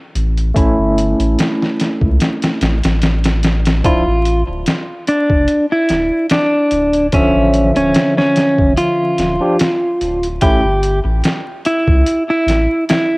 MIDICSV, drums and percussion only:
0, 0, Header, 1, 2, 480
1, 0, Start_track
1, 0, Key_signature, -1, "minor"
1, 0, Tempo, 821918
1, 325, Time_signature, 4, 2, 24, 8
1, 7695, End_track
2, 0, Start_track
2, 0, Title_t, "Drums"
2, 91, Note_on_c, 9, 42, 61
2, 149, Note_off_c, 9, 42, 0
2, 219, Note_on_c, 9, 42, 37
2, 278, Note_off_c, 9, 42, 0
2, 327, Note_on_c, 9, 36, 108
2, 329, Note_on_c, 9, 42, 84
2, 385, Note_off_c, 9, 36, 0
2, 388, Note_off_c, 9, 42, 0
2, 573, Note_on_c, 9, 42, 65
2, 631, Note_off_c, 9, 42, 0
2, 700, Note_on_c, 9, 42, 40
2, 759, Note_off_c, 9, 42, 0
2, 810, Note_on_c, 9, 42, 82
2, 818, Note_on_c, 9, 38, 106
2, 868, Note_off_c, 9, 42, 0
2, 877, Note_off_c, 9, 38, 0
2, 949, Note_on_c, 9, 38, 34
2, 1007, Note_off_c, 9, 38, 0
2, 1049, Note_on_c, 9, 42, 65
2, 1058, Note_on_c, 9, 38, 48
2, 1107, Note_off_c, 9, 42, 0
2, 1116, Note_off_c, 9, 38, 0
2, 1176, Note_on_c, 9, 36, 86
2, 1234, Note_off_c, 9, 36, 0
2, 1286, Note_on_c, 9, 42, 77
2, 1295, Note_on_c, 9, 38, 98
2, 1344, Note_off_c, 9, 42, 0
2, 1353, Note_off_c, 9, 38, 0
2, 1414, Note_on_c, 9, 42, 69
2, 1423, Note_on_c, 9, 38, 95
2, 1473, Note_off_c, 9, 42, 0
2, 1482, Note_off_c, 9, 38, 0
2, 1525, Note_on_c, 9, 42, 69
2, 1534, Note_on_c, 9, 38, 97
2, 1584, Note_off_c, 9, 42, 0
2, 1593, Note_off_c, 9, 38, 0
2, 1656, Note_on_c, 9, 42, 77
2, 1665, Note_on_c, 9, 38, 97
2, 1715, Note_off_c, 9, 42, 0
2, 1723, Note_off_c, 9, 38, 0
2, 1762, Note_on_c, 9, 42, 68
2, 1771, Note_on_c, 9, 38, 93
2, 1821, Note_off_c, 9, 42, 0
2, 1829, Note_off_c, 9, 38, 0
2, 1892, Note_on_c, 9, 42, 74
2, 1901, Note_on_c, 9, 38, 100
2, 1951, Note_off_c, 9, 42, 0
2, 1959, Note_off_c, 9, 38, 0
2, 2003, Note_on_c, 9, 42, 76
2, 2011, Note_on_c, 9, 38, 98
2, 2061, Note_off_c, 9, 42, 0
2, 2070, Note_off_c, 9, 38, 0
2, 2133, Note_on_c, 9, 42, 70
2, 2142, Note_on_c, 9, 38, 98
2, 2192, Note_off_c, 9, 42, 0
2, 2201, Note_off_c, 9, 38, 0
2, 2244, Note_on_c, 9, 42, 80
2, 2245, Note_on_c, 9, 36, 108
2, 2303, Note_off_c, 9, 42, 0
2, 2304, Note_off_c, 9, 36, 0
2, 2483, Note_on_c, 9, 42, 61
2, 2542, Note_off_c, 9, 42, 0
2, 2722, Note_on_c, 9, 42, 81
2, 2731, Note_on_c, 9, 38, 107
2, 2780, Note_off_c, 9, 42, 0
2, 2789, Note_off_c, 9, 38, 0
2, 2962, Note_on_c, 9, 42, 60
2, 3020, Note_off_c, 9, 42, 0
2, 3093, Note_on_c, 9, 36, 88
2, 3151, Note_off_c, 9, 36, 0
2, 3198, Note_on_c, 9, 42, 83
2, 3257, Note_off_c, 9, 42, 0
2, 3438, Note_on_c, 9, 42, 61
2, 3447, Note_on_c, 9, 38, 43
2, 3497, Note_off_c, 9, 42, 0
2, 3505, Note_off_c, 9, 38, 0
2, 3676, Note_on_c, 9, 42, 79
2, 3685, Note_on_c, 9, 38, 112
2, 3735, Note_off_c, 9, 42, 0
2, 3743, Note_off_c, 9, 38, 0
2, 3918, Note_on_c, 9, 42, 65
2, 3976, Note_off_c, 9, 42, 0
2, 4049, Note_on_c, 9, 42, 39
2, 4107, Note_off_c, 9, 42, 0
2, 4159, Note_on_c, 9, 42, 82
2, 4163, Note_on_c, 9, 36, 109
2, 4218, Note_off_c, 9, 42, 0
2, 4221, Note_off_c, 9, 36, 0
2, 4402, Note_on_c, 9, 42, 66
2, 4460, Note_off_c, 9, 42, 0
2, 4532, Note_on_c, 9, 42, 41
2, 4590, Note_off_c, 9, 42, 0
2, 4640, Note_on_c, 9, 42, 79
2, 4649, Note_on_c, 9, 38, 108
2, 4698, Note_off_c, 9, 42, 0
2, 4707, Note_off_c, 9, 38, 0
2, 4780, Note_on_c, 9, 38, 35
2, 4838, Note_off_c, 9, 38, 0
2, 4881, Note_on_c, 9, 42, 64
2, 4890, Note_on_c, 9, 38, 51
2, 4940, Note_off_c, 9, 42, 0
2, 4948, Note_off_c, 9, 38, 0
2, 5013, Note_on_c, 9, 36, 85
2, 5072, Note_off_c, 9, 36, 0
2, 5123, Note_on_c, 9, 42, 75
2, 5182, Note_off_c, 9, 42, 0
2, 5362, Note_on_c, 9, 42, 56
2, 5371, Note_on_c, 9, 38, 45
2, 5421, Note_off_c, 9, 42, 0
2, 5430, Note_off_c, 9, 38, 0
2, 5603, Note_on_c, 9, 42, 85
2, 5612, Note_on_c, 9, 38, 111
2, 5662, Note_off_c, 9, 42, 0
2, 5671, Note_off_c, 9, 38, 0
2, 5846, Note_on_c, 9, 42, 65
2, 5905, Note_off_c, 9, 42, 0
2, 5975, Note_on_c, 9, 42, 42
2, 6034, Note_off_c, 9, 42, 0
2, 6080, Note_on_c, 9, 42, 84
2, 6084, Note_on_c, 9, 36, 115
2, 6139, Note_off_c, 9, 42, 0
2, 6142, Note_off_c, 9, 36, 0
2, 6325, Note_on_c, 9, 42, 62
2, 6383, Note_off_c, 9, 42, 0
2, 6563, Note_on_c, 9, 42, 86
2, 6572, Note_on_c, 9, 38, 107
2, 6621, Note_off_c, 9, 42, 0
2, 6630, Note_off_c, 9, 38, 0
2, 6804, Note_on_c, 9, 42, 61
2, 6863, Note_off_c, 9, 42, 0
2, 6935, Note_on_c, 9, 36, 91
2, 6994, Note_off_c, 9, 36, 0
2, 7044, Note_on_c, 9, 42, 83
2, 7103, Note_off_c, 9, 42, 0
2, 7288, Note_on_c, 9, 42, 68
2, 7297, Note_on_c, 9, 38, 47
2, 7347, Note_off_c, 9, 42, 0
2, 7356, Note_off_c, 9, 38, 0
2, 7527, Note_on_c, 9, 42, 78
2, 7536, Note_on_c, 9, 38, 113
2, 7585, Note_off_c, 9, 42, 0
2, 7594, Note_off_c, 9, 38, 0
2, 7695, End_track
0, 0, End_of_file